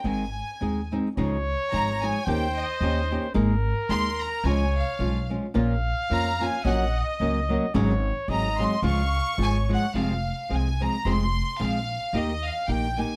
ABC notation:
X:1
M:2/4
L:1/8
Q:"Swing" 1/4=110
K:Ab
V:1 name="Violin section"
a3 z | [K:Db] z2 b a | =g e2 z | z2 c' b |
a f2 z | z2 b a | g e2 z | z2 b c' |
d'2 a g | [K:Fm] f2 a b | c'2 f2 | e f g a |]
V:2 name="Trumpet"
z4 | [K:Db] d4 | c4 | B4 |
d3 z | f4 | e4 | d2 e2 |
f2 d2 | [K:Fm] z4 | z4 | z4 |]
V:3 name="Nylon-string guitar"
[A,,E,A,CEA] z [A,CEA] [A,CEA] | [K:Db] [D,F,A,EA] z [F,A,EA] [F,A,EA] | [E,B,D=G] z [E,B,DG] [E,B,DG] | [A,B,EA] z [A,B,EA] z |
[D,F,A,DF] z [F,A,DF] [F,A,DF] | [B,,F,B,DF] z [F,B,DF] [F,B,DF] | [B,,G,B,DG] z [G,B,DG] [G,B,DG] | [A,,D,G,DEA] z [G,A,CA] [G,A,CA] |
[D,F,A,FA] z [F,A,FA] [F,A,FA] | [K:Fm] [F,,C,F,A,CA] z [F,A,CA] [F,A,CA] | [F,,C,F,A,CA] z [F,A,CA] z | [E,B,EG] z [E,B,EG] [E,B,EG] |]
V:4 name="Upright bass" clef=bass
A,,,2 E,,2 | [K:Db] D,,2 A,,,2 | E,,2 E,,2 | A,,,2 E,,2 |
D,,2 _C,,2 | B,,,2 F,,2 | B,,,2 D,,2 | A,,,2 A,,,2 |
D,,2 A,,,2 | [K:Fm] F,,,2 C,,2 | F,,,2 B,,,2 | E,,2 B,,,2 |]